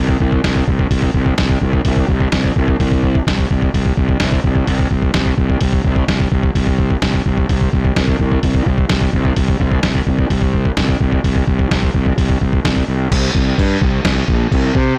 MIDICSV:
0, 0, Header, 1, 3, 480
1, 0, Start_track
1, 0, Tempo, 468750
1, 1904, Time_signature, 4, 2, 24, 8
1, 15344, End_track
2, 0, Start_track
2, 0, Title_t, "Fingered electric bass"
2, 0, Program_c, 0, 33
2, 0, Note_on_c, 0, 36, 82
2, 162, Note_off_c, 0, 36, 0
2, 212, Note_on_c, 0, 36, 87
2, 403, Note_off_c, 0, 36, 0
2, 454, Note_on_c, 0, 36, 88
2, 644, Note_off_c, 0, 36, 0
2, 690, Note_on_c, 0, 36, 73
2, 882, Note_off_c, 0, 36, 0
2, 928, Note_on_c, 0, 36, 87
2, 1121, Note_off_c, 0, 36, 0
2, 1170, Note_on_c, 0, 36, 74
2, 1363, Note_off_c, 0, 36, 0
2, 1421, Note_on_c, 0, 36, 74
2, 1609, Note_off_c, 0, 36, 0
2, 1655, Note_on_c, 0, 36, 82
2, 1846, Note_off_c, 0, 36, 0
2, 1902, Note_on_c, 0, 36, 81
2, 2090, Note_off_c, 0, 36, 0
2, 2138, Note_on_c, 0, 36, 94
2, 2328, Note_off_c, 0, 36, 0
2, 2382, Note_on_c, 0, 36, 90
2, 2570, Note_off_c, 0, 36, 0
2, 2630, Note_on_c, 0, 36, 76
2, 2815, Note_off_c, 0, 36, 0
2, 2866, Note_on_c, 0, 36, 88
2, 3241, Note_off_c, 0, 36, 0
2, 3352, Note_on_c, 0, 36, 84
2, 3538, Note_off_c, 0, 36, 0
2, 3596, Note_on_c, 0, 36, 83
2, 3780, Note_off_c, 0, 36, 0
2, 3832, Note_on_c, 0, 36, 85
2, 4018, Note_off_c, 0, 36, 0
2, 4073, Note_on_c, 0, 36, 86
2, 4259, Note_off_c, 0, 36, 0
2, 4308, Note_on_c, 0, 36, 85
2, 4496, Note_off_c, 0, 36, 0
2, 4553, Note_on_c, 0, 36, 70
2, 4739, Note_off_c, 0, 36, 0
2, 4790, Note_on_c, 0, 36, 86
2, 4977, Note_off_c, 0, 36, 0
2, 5028, Note_on_c, 0, 36, 78
2, 5217, Note_off_c, 0, 36, 0
2, 5267, Note_on_c, 0, 36, 72
2, 5456, Note_off_c, 0, 36, 0
2, 5512, Note_on_c, 0, 36, 84
2, 5699, Note_off_c, 0, 36, 0
2, 5753, Note_on_c, 0, 36, 76
2, 5940, Note_off_c, 0, 36, 0
2, 5988, Note_on_c, 0, 36, 85
2, 6177, Note_off_c, 0, 36, 0
2, 6229, Note_on_c, 0, 36, 85
2, 6418, Note_off_c, 0, 36, 0
2, 6473, Note_on_c, 0, 36, 77
2, 6660, Note_off_c, 0, 36, 0
2, 6712, Note_on_c, 0, 36, 83
2, 7087, Note_off_c, 0, 36, 0
2, 7189, Note_on_c, 0, 36, 79
2, 7378, Note_off_c, 0, 36, 0
2, 7436, Note_on_c, 0, 36, 79
2, 7623, Note_off_c, 0, 36, 0
2, 7683, Note_on_c, 0, 36, 83
2, 7867, Note_off_c, 0, 36, 0
2, 7923, Note_on_c, 0, 36, 86
2, 8107, Note_off_c, 0, 36, 0
2, 8160, Note_on_c, 0, 36, 85
2, 8345, Note_off_c, 0, 36, 0
2, 8395, Note_on_c, 0, 36, 78
2, 8582, Note_off_c, 0, 36, 0
2, 8637, Note_on_c, 0, 36, 82
2, 8824, Note_off_c, 0, 36, 0
2, 8877, Note_on_c, 0, 36, 77
2, 9063, Note_off_c, 0, 36, 0
2, 9118, Note_on_c, 0, 36, 82
2, 9304, Note_off_c, 0, 36, 0
2, 9354, Note_on_c, 0, 36, 86
2, 9541, Note_off_c, 0, 36, 0
2, 9601, Note_on_c, 0, 36, 85
2, 9786, Note_off_c, 0, 36, 0
2, 9831, Note_on_c, 0, 36, 87
2, 10020, Note_off_c, 0, 36, 0
2, 10071, Note_on_c, 0, 36, 95
2, 10260, Note_off_c, 0, 36, 0
2, 10312, Note_on_c, 0, 36, 82
2, 10500, Note_off_c, 0, 36, 0
2, 10552, Note_on_c, 0, 36, 87
2, 10928, Note_off_c, 0, 36, 0
2, 11030, Note_on_c, 0, 36, 84
2, 11219, Note_off_c, 0, 36, 0
2, 11276, Note_on_c, 0, 36, 80
2, 11463, Note_off_c, 0, 36, 0
2, 11515, Note_on_c, 0, 36, 84
2, 11702, Note_off_c, 0, 36, 0
2, 11755, Note_on_c, 0, 36, 83
2, 11942, Note_off_c, 0, 36, 0
2, 11997, Note_on_c, 0, 36, 84
2, 12183, Note_off_c, 0, 36, 0
2, 12235, Note_on_c, 0, 36, 76
2, 12422, Note_off_c, 0, 36, 0
2, 12476, Note_on_c, 0, 36, 82
2, 12663, Note_off_c, 0, 36, 0
2, 12713, Note_on_c, 0, 36, 74
2, 12900, Note_off_c, 0, 36, 0
2, 12955, Note_on_c, 0, 36, 76
2, 13141, Note_off_c, 0, 36, 0
2, 13193, Note_on_c, 0, 36, 78
2, 13380, Note_off_c, 0, 36, 0
2, 13430, Note_on_c, 0, 36, 93
2, 13606, Note_off_c, 0, 36, 0
2, 13671, Note_on_c, 0, 36, 96
2, 13846, Note_off_c, 0, 36, 0
2, 13914, Note_on_c, 0, 43, 98
2, 14088, Note_off_c, 0, 43, 0
2, 14151, Note_on_c, 0, 36, 89
2, 14325, Note_off_c, 0, 36, 0
2, 14385, Note_on_c, 0, 36, 95
2, 14561, Note_off_c, 0, 36, 0
2, 14627, Note_on_c, 0, 34, 86
2, 14802, Note_off_c, 0, 34, 0
2, 14872, Note_on_c, 0, 36, 85
2, 15045, Note_off_c, 0, 36, 0
2, 15111, Note_on_c, 0, 48, 90
2, 15284, Note_off_c, 0, 48, 0
2, 15344, End_track
3, 0, Start_track
3, 0, Title_t, "Drums"
3, 89, Note_on_c, 9, 36, 81
3, 191, Note_off_c, 9, 36, 0
3, 210, Note_on_c, 9, 36, 87
3, 312, Note_off_c, 9, 36, 0
3, 331, Note_on_c, 9, 36, 78
3, 434, Note_off_c, 9, 36, 0
3, 451, Note_on_c, 9, 36, 70
3, 451, Note_on_c, 9, 46, 50
3, 453, Note_on_c, 9, 38, 87
3, 553, Note_off_c, 9, 36, 0
3, 553, Note_off_c, 9, 46, 0
3, 556, Note_off_c, 9, 38, 0
3, 573, Note_on_c, 9, 36, 75
3, 675, Note_off_c, 9, 36, 0
3, 694, Note_on_c, 9, 36, 86
3, 797, Note_off_c, 9, 36, 0
3, 812, Note_on_c, 9, 36, 80
3, 914, Note_off_c, 9, 36, 0
3, 930, Note_on_c, 9, 46, 57
3, 931, Note_on_c, 9, 36, 76
3, 1033, Note_off_c, 9, 36, 0
3, 1033, Note_off_c, 9, 46, 0
3, 1049, Note_on_c, 9, 36, 71
3, 1152, Note_off_c, 9, 36, 0
3, 1171, Note_on_c, 9, 36, 75
3, 1274, Note_off_c, 9, 36, 0
3, 1291, Note_on_c, 9, 36, 81
3, 1393, Note_off_c, 9, 36, 0
3, 1411, Note_on_c, 9, 46, 48
3, 1413, Note_on_c, 9, 36, 80
3, 1413, Note_on_c, 9, 38, 102
3, 1513, Note_off_c, 9, 46, 0
3, 1515, Note_off_c, 9, 38, 0
3, 1516, Note_off_c, 9, 36, 0
3, 1534, Note_on_c, 9, 36, 78
3, 1636, Note_off_c, 9, 36, 0
3, 1654, Note_on_c, 9, 36, 70
3, 1756, Note_off_c, 9, 36, 0
3, 1774, Note_on_c, 9, 36, 76
3, 1877, Note_off_c, 9, 36, 0
3, 1892, Note_on_c, 9, 46, 52
3, 1894, Note_on_c, 9, 36, 74
3, 1994, Note_off_c, 9, 46, 0
3, 1997, Note_off_c, 9, 36, 0
3, 2015, Note_on_c, 9, 36, 80
3, 2118, Note_off_c, 9, 36, 0
3, 2135, Note_on_c, 9, 36, 89
3, 2238, Note_off_c, 9, 36, 0
3, 2258, Note_on_c, 9, 36, 72
3, 2360, Note_off_c, 9, 36, 0
3, 2376, Note_on_c, 9, 46, 49
3, 2378, Note_on_c, 9, 38, 102
3, 2380, Note_on_c, 9, 36, 73
3, 2479, Note_off_c, 9, 46, 0
3, 2481, Note_off_c, 9, 38, 0
3, 2482, Note_off_c, 9, 36, 0
3, 2503, Note_on_c, 9, 36, 74
3, 2606, Note_off_c, 9, 36, 0
3, 2623, Note_on_c, 9, 36, 85
3, 2725, Note_off_c, 9, 36, 0
3, 2745, Note_on_c, 9, 36, 82
3, 2847, Note_off_c, 9, 36, 0
3, 2866, Note_on_c, 9, 36, 83
3, 2867, Note_on_c, 9, 46, 46
3, 2969, Note_off_c, 9, 36, 0
3, 2969, Note_off_c, 9, 46, 0
3, 2986, Note_on_c, 9, 36, 80
3, 3089, Note_off_c, 9, 36, 0
3, 3106, Note_on_c, 9, 36, 72
3, 3208, Note_off_c, 9, 36, 0
3, 3228, Note_on_c, 9, 36, 83
3, 3331, Note_off_c, 9, 36, 0
3, 3348, Note_on_c, 9, 36, 78
3, 3356, Note_on_c, 9, 46, 47
3, 3358, Note_on_c, 9, 38, 99
3, 3450, Note_off_c, 9, 36, 0
3, 3458, Note_off_c, 9, 46, 0
3, 3460, Note_off_c, 9, 38, 0
3, 3468, Note_on_c, 9, 36, 80
3, 3571, Note_off_c, 9, 36, 0
3, 3591, Note_on_c, 9, 36, 74
3, 3694, Note_off_c, 9, 36, 0
3, 3710, Note_on_c, 9, 36, 70
3, 3813, Note_off_c, 9, 36, 0
3, 3831, Note_on_c, 9, 36, 79
3, 3834, Note_on_c, 9, 46, 49
3, 3933, Note_off_c, 9, 36, 0
3, 3936, Note_off_c, 9, 46, 0
3, 3950, Note_on_c, 9, 36, 76
3, 4052, Note_off_c, 9, 36, 0
3, 4070, Note_on_c, 9, 36, 92
3, 4172, Note_off_c, 9, 36, 0
3, 4187, Note_on_c, 9, 36, 72
3, 4290, Note_off_c, 9, 36, 0
3, 4299, Note_on_c, 9, 46, 53
3, 4301, Note_on_c, 9, 38, 97
3, 4306, Note_on_c, 9, 36, 72
3, 4401, Note_off_c, 9, 46, 0
3, 4403, Note_off_c, 9, 38, 0
3, 4409, Note_off_c, 9, 36, 0
3, 4427, Note_on_c, 9, 36, 80
3, 4530, Note_off_c, 9, 36, 0
3, 4548, Note_on_c, 9, 36, 80
3, 4650, Note_off_c, 9, 36, 0
3, 4665, Note_on_c, 9, 36, 81
3, 4768, Note_off_c, 9, 36, 0
3, 4787, Note_on_c, 9, 36, 79
3, 4787, Note_on_c, 9, 46, 54
3, 4889, Note_off_c, 9, 46, 0
3, 4890, Note_off_c, 9, 36, 0
3, 4909, Note_on_c, 9, 36, 78
3, 5011, Note_off_c, 9, 36, 0
3, 5026, Note_on_c, 9, 36, 73
3, 5129, Note_off_c, 9, 36, 0
3, 5145, Note_on_c, 9, 36, 68
3, 5247, Note_off_c, 9, 36, 0
3, 5262, Note_on_c, 9, 46, 50
3, 5264, Note_on_c, 9, 38, 105
3, 5265, Note_on_c, 9, 36, 78
3, 5364, Note_off_c, 9, 46, 0
3, 5366, Note_off_c, 9, 38, 0
3, 5368, Note_off_c, 9, 36, 0
3, 5385, Note_on_c, 9, 36, 73
3, 5487, Note_off_c, 9, 36, 0
3, 5506, Note_on_c, 9, 36, 79
3, 5608, Note_off_c, 9, 36, 0
3, 5628, Note_on_c, 9, 36, 72
3, 5731, Note_off_c, 9, 36, 0
3, 5740, Note_on_c, 9, 46, 52
3, 5747, Note_on_c, 9, 36, 72
3, 5843, Note_off_c, 9, 46, 0
3, 5849, Note_off_c, 9, 36, 0
3, 5868, Note_on_c, 9, 36, 77
3, 5970, Note_off_c, 9, 36, 0
3, 5986, Note_on_c, 9, 36, 85
3, 6088, Note_off_c, 9, 36, 0
3, 6105, Note_on_c, 9, 36, 84
3, 6207, Note_off_c, 9, 36, 0
3, 6228, Note_on_c, 9, 36, 73
3, 6229, Note_on_c, 9, 46, 46
3, 6231, Note_on_c, 9, 38, 90
3, 6330, Note_off_c, 9, 36, 0
3, 6332, Note_off_c, 9, 46, 0
3, 6334, Note_off_c, 9, 38, 0
3, 6350, Note_on_c, 9, 36, 82
3, 6452, Note_off_c, 9, 36, 0
3, 6469, Note_on_c, 9, 36, 85
3, 6571, Note_off_c, 9, 36, 0
3, 6589, Note_on_c, 9, 36, 84
3, 6691, Note_off_c, 9, 36, 0
3, 6709, Note_on_c, 9, 36, 82
3, 6712, Note_on_c, 9, 46, 49
3, 6812, Note_off_c, 9, 36, 0
3, 6815, Note_off_c, 9, 46, 0
3, 6829, Note_on_c, 9, 36, 77
3, 6931, Note_off_c, 9, 36, 0
3, 6949, Note_on_c, 9, 36, 79
3, 7051, Note_off_c, 9, 36, 0
3, 7071, Note_on_c, 9, 36, 77
3, 7173, Note_off_c, 9, 36, 0
3, 7188, Note_on_c, 9, 46, 47
3, 7189, Note_on_c, 9, 36, 82
3, 7190, Note_on_c, 9, 38, 98
3, 7291, Note_off_c, 9, 36, 0
3, 7291, Note_off_c, 9, 46, 0
3, 7293, Note_off_c, 9, 38, 0
3, 7311, Note_on_c, 9, 36, 74
3, 7413, Note_off_c, 9, 36, 0
3, 7433, Note_on_c, 9, 36, 71
3, 7535, Note_off_c, 9, 36, 0
3, 7553, Note_on_c, 9, 36, 76
3, 7655, Note_off_c, 9, 36, 0
3, 7673, Note_on_c, 9, 46, 47
3, 7675, Note_on_c, 9, 36, 82
3, 7776, Note_off_c, 9, 46, 0
3, 7777, Note_off_c, 9, 36, 0
3, 7797, Note_on_c, 9, 36, 74
3, 7899, Note_off_c, 9, 36, 0
3, 7917, Note_on_c, 9, 36, 84
3, 8020, Note_off_c, 9, 36, 0
3, 8037, Note_on_c, 9, 36, 80
3, 8139, Note_off_c, 9, 36, 0
3, 8154, Note_on_c, 9, 46, 47
3, 8155, Note_on_c, 9, 36, 80
3, 8156, Note_on_c, 9, 38, 99
3, 8257, Note_off_c, 9, 36, 0
3, 8257, Note_off_c, 9, 46, 0
3, 8259, Note_off_c, 9, 38, 0
3, 8273, Note_on_c, 9, 36, 79
3, 8376, Note_off_c, 9, 36, 0
3, 8393, Note_on_c, 9, 36, 83
3, 8496, Note_off_c, 9, 36, 0
3, 8516, Note_on_c, 9, 36, 88
3, 8619, Note_off_c, 9, 36, 0
3, 8632, Note_on_c, 9, 46, 54
3, 8634, Note_on_c, 9, 36, 84
3, 8735, Note_off_c, 9, 46, 0
3, 8737, Note_off_c, 9, 36, 0
3, 8752, Note_on_c, 9, 36, 83
3, 8854, Note_off_c, 9, 36, 0
3, 8871, Note_on_c, 9, 36, 77
3, 8974, Note_off_c, 9, 36, 0
3, 8992, Note_on_c, 9, 36, 80
3, 9094, Note_off_c, 9, 36, 0
3, 9107, Note_on_c, 9, 46, 55
3, 9109, Note_on_c, 9, 38, 99
3, 9112, Note_on_c, 9, 36, 72
3, 9210, Note_off_c, 9, 46, 0
3, 9212, Note_off_c, 9, 38, 0
3, 9214, Note_off_c, 9, 36, 0
3, 9232, Note_on_c, 9, 36, 73
3, 9334, Note_off_c, 9, 36, 0
3, 9352, Note_on_c, 9, 36, 78
3, 9455, Note_off_c, 9, 36, 0
3, 9473, Note_on_c, 9, 36, 77
3, 9575, Note_off_c, 9, 36, 0
3, 9589, Note_on_c, 9, 46, 56
3, 9592, Note_on_c, 9, 36, 79
3, 9692, Note_off_c, 9, 46, 0
3, 9695, Note_off_c, 9, 36, 0
3, 9712, Note_on_c, 9, 36, 81
3, 9814, Note_off_c, 9, 36, 0
3, 9830, Note_on_c, 9, 36, 87
3, 9932, Note_off_c, 9, 36, 0
3, 9949, Note_on_c, 9, 36, 75
3, 10051, Note_off_c, 9, 36, 0
3, 10065, Note_on_c, 9, 46, 51
3, 10067, Note_on_c, 9, 38, 98
3, 10070, Note_on_c, 9, 36, 77
3, 10168, Note_off_c, 9, 46, 0
3, 10170, Note_off_c, 9, 38, 0
3, 10172, Note_off_c, 9, 36, 0
3, 10191, Note_on_c, 9, 36, 77
3, 10293, Note_off_c, 9, 36, 0
3, 10310, Note_on_c, 9, 36, 82
3, 10412, Note_off_c, 9, 36, 0
3, 10430, Note_on_c, 9, 36, 80
3, 10533, Note_off_c, 9, 36, 0
3, 10550, Note_on_c, 9, 36, 74
3, 10551, Note_on_c, 9, 46, 48
3, 10652, Note_off_c, 9, 36, 0
3, 10653, Note_off_c, 9, 46, 0
3, 10667, Note_on_c, 9, 36, 71
3, 10770, Note_off_c, 9, 36, 0
3, 10786, Note_on_c, 9, 36, 75
3, 10889, Note_off_c, 9, 36, 0
3, 10909, Note_on_c, 9, 36, 75
3, 11012, Note_off_c, 9, 36, 0
3, 11027, Note_on_c, 9, 46, 49
3, 11028, Note_on_c, 9, 36, 84
3, 11029, Note_on_c, 9, 38, 104
3, 11130, Note_off_c, 9, 46, 0
3, 11131, Note_off_c, 9, 36, 0
3, 11132, Note_off_c, 9, 38, 0
3, 11150, Note_on_c, 9, 36, 79
3, 11252, Note_off_c, 9, 36, 0
3, 11270, Note_on_c, 9, 36, 81
3, 11372, Note_off_c, 9, 36, 0
3, 11391, Note_on_c, 9, 36, 73
3, 11494, Note_off_c, 9, 36, 0
3, 11511, Note_on_c, 9, 36, 77
3, 11514, Note_on_c, 9, 46, 49
3, 11614, Note_off_c, 9, 36, 0
3, 11616, Note_off_c, 9, 46, 0
3, 11631, Note_on_c, 9, 36, 81
3, 11733, Note_off_c, 9, 36, 0
3, 11750, Note_on_c, 9, 36, 81
3, 11853, Note_off_c, 9, 36, 0
3, 11871, Note_on_c, 9, 36, 75
3, 11973, Note_off_c, 9, 36, 0
3, 11992, Note_on_c, 9, 36, 77
3, 11993, Note_on_c, 9, 46, 46
3, 11996, Note_on_c, 9, 38, 91
3, 12095, Note_off_c, 9, 36, 0
3, 12096, Note_off_c, 9, 46, 0
3, 12098, Note_off_c, 9, 38, 0
3, 12113, Note_on_c, 9, 36, 82
3, 12216, Note_off_c, 9, 36, 0
3, 12231, Note_on_c, 9, 36, 78
3, 12334, Note_off_c, 9, 36, 0
3, 12351, Note_on_c, 9, 36, 85
3, 12453, Note_off_c, 9, 36, 0
3, 12470, Note_on_c, 9, 36, 89
3, 12472, Note_on_c, 9, 46, 52
3, 12573, Note_off_c, 9, 36, 0
3, 12575, Note_off_c, 9, 46, 0
3, 12591, Note_on_c, 9, 36, 75
3, 12694, Note_off_c, 9, 36, 0
3, 12712, Note_on_c, 9, 36, 71
3, 12815, Note_off_c, 9, 36, 0
3, 12831, Note_on_c, 9, 36, 78
3, 12934, Note_off_c, 9, 36, 0
3, 12951, Note_on_c, 9, 36, 77
3, 12953, Note_on_c, 9, 46, 53
3, 12955, Note_on_c, 9, 38, 104
3, 13053, Note_off_c, 9, 36, 0
3, 13055, Note_off_c, 9, 46, 0
3, 13057, Note_off_c, 9, 38, 0
3, 13071, Note_on_c, 9, 36, 75
3, 13173, Note_off_c, 9, 36, 0
3, 13431, Note_on_c, 9, 36, 81
3, 13433, Note_on_c, 9, 49, 119
3, 13433, Note_on_c, 9, 57, 64
3, 13533, Note_off_c, 9, 36, 0
3, 13536, Note_off_c, 9, 49, 0
3, 13536, Note_off_c, 9, 57, 0
3, 13668, Note_on_c, 9, 36, 90
3, 13771, Note_off_c, 9, 36, 0
3, 13909, Note_on_c, 9, 36, 83
3, 13917, Note_on_c, 9, 57, 64
3, 14012, Note_off_c, 9, 36, 0
3, 14019, Note_off_c, 9, 57, 0
3, 14147, Note_on_c, 9, 36, 95
3, 14249, Note_off_c, 9, 36, 0
3, 14385, Note_on_c, 9, 36, 91
3, 14385, Note_on_c, 9, 57, 67
3, 14387, Note_on_c, 9, 38, 113
3, 14487, Note_off_c, 9, 57, 0
3, 14488, Note_off_c, 9, 36, 0
3, 14489, Note_off_c, 9, 38, 0
3, 14625, Note_on_c, 9, 36, 84
3, 14728, Note_off_c, 9, 36, 0
3, 14865, Note_on_c, 9, 36, 90
3, 14869, Note_on_c, 9, 57, 59
3, 14968, Note_off_c, 9, 36, 0
3, 14971, Note_off_c, 9, 57, 0
3, 15105, Note_on_c, 9, 36, 88
3, 15207, Note_off_c, 9, 36, 0
3, 15344, End_track
0, 0, End_of_file